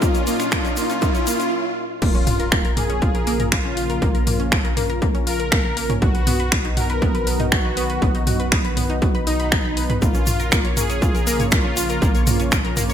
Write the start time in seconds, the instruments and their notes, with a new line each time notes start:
Already playing: analog synth pad A#2 F#3 D#4 A#4 D#5, riser
0.02 synth pluck A#3, supersaw synth F4, kick, closed hi-hat, shaker
0.15 synth pluck C#4, closed hi-hat, shaker
0.27 synth pluck A#3, supersaw synth F4, open hi-hat, shaker
0.40 synth pluck C#4, finger snap, closed hi-hat, shaker
0.52 synth pluck A#3, supersaw synth F4, finger snap, kick, closed hi-hat, shaker
0.65 synth pluck C#4, closed hi-hat, shaker
0.77 synth pluck A#3, supersaw synth F4, mid tom, open hi-hat, shaker
0.90 synth pluck C#4, closed hi-hat, shaker
1.02 synth pluck A#3, supersaw synth F4, kick, closed hi-hat, shaker
1.15 synth pluck C#4, closed hi-hat, shaker
1.27 synth pluck A#3, supersaw synth F4, open hi-hat, shaker
1.40 synth pluck C#4, closed hi-hat, shaker
2.02 analog synth bass A#1, analog synth pad C#3 F3 A#3 F4, synth pluck A#3 A#4, supersaw synth F4, kick, closed hi-hat, crash, impact
2.15 synth pluck C#4 C#5, closed hi-hat
2.27 synth pluck F4 F5, mid tom, open hi-hat
2.40 synth pluck A#4 A#5, closed hi-hat
2.52 synth pluck A#3 A#4, finger snap, kick, closed hi-hat
2.65 synth pluck A#4 A#5, closed hi-hat
2.77 synth pluck A#3 A#4, supersaw synth G#4, mid tom, open hi-hat
2.90 synth pluck C#4 C#5, closed hi-hat
3.02 synth pluck F4 F5, kick, closed hi-hat
3.15 synth pluck A#4 A#5, closed hi-hat
3.27 synth pluck A#3 A#4, open hi-hat
3.40 synth pluck A#4 A#5, closed hi-hat, mid tom
3.52 synth pluck A#3 A#4, supersaw synth F4, finger snap, kick, closed hi-hat
3.65 synth pluck C#4 C#5
3.77 synth pluck F4 F5, open hi-hat
3.90 synth pluck A#4 A#5, closed hi-hat
4.02 analog synth bass A#1, synth pluck A#3 A#4, kick, closed hi-hat
4.15 synth pluck A#4 A#5, closed hi-hat
4.27 synth pluck A#3 A#4, mid tom, open hi-hat
4.40 synth pluck C#4 C#5, closed hi-hat
4.52 synth pluck F4 F5, finger snap, kick, closed hi-hat
4.65 synth pluck A#4 A#5, closed hi-hat
4.77 synth pluck A#3 A#4, mid tom, open hi-hat
4.90 synth pluck A#4 A#5, closed hi-hat
5.02 synth pluck A#3 A#4, kick, closed hi-hat
5.15 synth pluck C#4 C#5, closed hi-hat
5.27 synth pluck F4 F5, supersaw synth A#4, open hi-hat
5.40 synth pluck A#4 A#5, closed hi-hat
5.52 synth pluck A#3 A#4, finger snap, kick, closed hi-hat
5.65 synth pluck A#4 A#5
5.77 synth pluck A#3 A#4, open hi-hat
5.90 synth pluck C#4 C#5, closed hi-hat, mid tom
6.02 analog synth bass B1, analog synth pad D#3 F#3 B3 F#4, supersaw synth F#4, synth pluck F#4 F#5, kick, closed hi-hat
6.15 synth pluck B4 B5, closed hi-hat
6.27 synth pluck B3 B4, mid tom, open hi-hat
6.40 synth pluck B4 B5, closed hi-hat
6.52 synth pluck B3 B4, finger snap, kick, closed hi-hat
6.65 synth pluck D#4 D#5, closed hi-hat
6.77 synth pluck F#4 F#5, supersaw synth A#4, mid tom, open hi-hat
6.90 synth pluck B4 B5, closed hi-hat
7.02 synth pluck B3 B4, kick, closed hi-hat
7.15 synth pluck B4 B5, closed hi-hat
7.27 synth pluck B3 B4, open hi-hat
7.40 synth pluck D#4 D#5, closed hi-hat, mid tom
7.52 supersaw synth F#4, synth pluck F#4 F#5, finger snap, kick, closed hi-hat
7.65 synth pluck B4 B5
7.77 synth pluck B3 B4, open hi-hat
7.90 synth pluck B4 B5, closed hi-hat
8.02 analog synth bass B1, synth pluck B3 B4, kick, closed hi-hat
8.15 synth pluck D#4 D#5, closed hi-hat
8.27 synth pluck F#4 F#5, mid tom, open hi-hat
8.40 synth pluck B4 B5, closed hi-hat
8.52 synth pluck B3 B4, finger snap, kick, closed hi-hat
8.65 synth pluck B4 B5, closed hi-hat
8.77 synth pluck B3 B4, mid tom, open hi-hat
8.90 synth pluck D#4 D#5, closed hi-hat
9.02 synth pluck F#4 F#5, kick, closed hi-hat
9.15 synth pluck B4 B5, closed hi-hat
9.27 synth pluck D#4 D#5, supersaw synth D#4, open hi-hat
9.40 synth pluck B5, closed hi-hat
9.52 synth pluck B4 B5, finger snap, kick, closed hi-hat
9.65 synth pluck B5
9.77 synth pluck B4 B5, open hi-hat
9.90 synth pluck B4 B5, closed hi-hat, mid tom
10.02 analog synth bass A#1, analog synth pad C#3 F3 A#3 F4, synth pluck A#3 A#4, supersaw synth F4, kick, closed hi-hat, shaker
10.14 synth pluck C#4 C#5, closed hi-hat, shaker
10.27 synth pluck F4 F5, mid tom, open hi-hat, shaker
10.40 synth pluck A#4 A#5, closed hi-hat, shaker
10.52 synth pluck A#3 A#4, finger snap, kick, closed hi-hat, shaker
10.65 synth pluck C#5 C#6, closed hi-hat
10.77 synth pluck A#3 A#4, supersaw synth G#4, mid tom, open hi-hat, shaker
10.90 synth pluck C#4 C#5, closed hi-hat, shaker
11.02 synth pluck F4 F5, kick, closed hi-hat, shaker
11.15 synth pluck A#4 A#5, closed hi-hat, shaker
11.27 synth pluck A#3 A#4, open hi-hat, shaker
11.40 synth pluck C#5 C#6, closed hi-hat, mid tom, shaker
11.52 synth pluck A#3 A#4, supersaw synth F4, finger snap, kick, closed hi-hat, shaker
11.65 synth pluck C#4 C#5
11.77 synth pluck F4 F5, open hi-hat, shaker
11.89 synth pluck A#4 A#5, closed hi-hat, shaker
12.02 analog synth bass A#1, synth pluck A#3 A#4, kick, closed hi-hat, shaker
12.15 synth pluck C#5 C#6, closed hi-hat, shaker
12.27 synth pluck A#3 A#4, mid tom, open hi-hat, shaker
12.40 synth pluck C#4 C#5, closed hi-hat, shaker
12.52 synth pluck F4 F5, finger snap, kick, closed hi-hat, shaker
12.65 synth pluck A#4 A#5, closed hi-hat
12.77 synth pluck A#3 A#4, mid tom, open hi-hat, shaker
12.90 synth pluck C#5 C#6, closed hi-hat, shaker